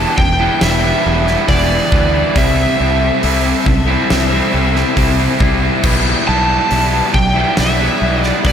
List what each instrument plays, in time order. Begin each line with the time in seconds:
Already playing: overdriven electric guitar E3 G3 B3 E4, string section E3 D4 G5, distorted electric guitar B3 E4, electric slide guitar A5
0.00 distorted electric guitar G3
0.18 fingered electric bass E1, electric slide guitar G5, muted overdriven electric guitar stroke, muted distorted electric guitar stroke, kick
0.39 overdriven electric guitar G3 B3 E4
0.61 fingered electric bass E1, electric slide guitar E5, snare, open hi-hat
0.82 overdriven electric guitar G3 B3 E4
1.04 fingered electric bass E1, overdriven electric guitar E3 G3 B3 E4
1.27 distorted electric guitar G3 B3 E4, snare
1.48 fingered electric bass E1, overdriven electric guitar E3 G3 B3 E4, electric slide guitar D5, kick, open hi-hat
1.69 overdriven electric guitar G3 B3 E4
1.91 fingered electric bass D2, overdriven electric guitar E3 G3 B3 E4, kick
2.13 overdriven electric guitar G3 B3 E4
2.34 fingered electric bass C2, overdriven electric guitar C3 G3 C4 E4, string section C4 A4 E5, electric slide guitar E5, kick, open hi-hat
2.78 fingered electric bass C2, overdriven electric guitar C3 G3 C4 E4
3.01 overdriven electric guitar G3 C4 E4
3.22 fingered electric bass C2, overdriven electric guitar C3 G3 C4 E4, open hi-hat
3.44 distorted electric guitar G3 C4 E4
3.66 fingered electric bass C2, muted overdriven electric guitar stroke, muted distorted electric guitar stroke, kick
3.87 overdriven electric guitar G3 C4 E4
4.10 fingered electric bass C2, snare, open hi-hat
4.30 overdriven electric guitar G3 C4 E4
4.52 fingered electric bass C2, overdriven electric guitar C3 G3 C4 E4
4.75 distorted electric guitar G3 C4 E4, snare
4.95 fingered electric bass C2, overdriven electric guitar C3 G3 C4 E4, kick, open hi-hat
5.17 overdriven electric guitar G3 C4 E4
5.39 fingered electric bass C2, overdriven electric guitar C3 G3 C4 E4, kick
5.61 overdriven electric guitar G3 C4 E4
5.82 fingered electric bass B1, overdriven electric guitar B2 G3 B3 E4, string section E4 G4 D5, kick, crash
6.26 fingered electric bass B1, overdriven electric guitar B2 G3 B3 E4, electric slide guitar A5
6.48 overdriven electric guitar G3 B3 E4
6.69 fingered electric bass B1, overdriven electric guitar B2 G3 B3 E4, open hi-hat
6.92 distorted electric guitar G3 B3 E4
7.13 fingered electric bass B1, electric slide guitar G5, muted overdriven electric guitar stroke, muted distorted electric guitar stroke, kick
7.34 overdriven electric guitar G3 B3 E4
7.57 fingered electric bass B1, electric slide guitar E5, snare, open hi-hat
7.77 overdriven electric guitar G3 B3 E4
8.00 fingered electric bass B1, overdriven electric guitar B2 G3 B3 E4
8.23 distorted electric guitar G3 B3 E4, electric slide guitar D5, snare
8.43 fingered electric bass B1, overdriven electric guitar B2 G3 B3 E4, electric slide guitar D5, kick, open hi-hat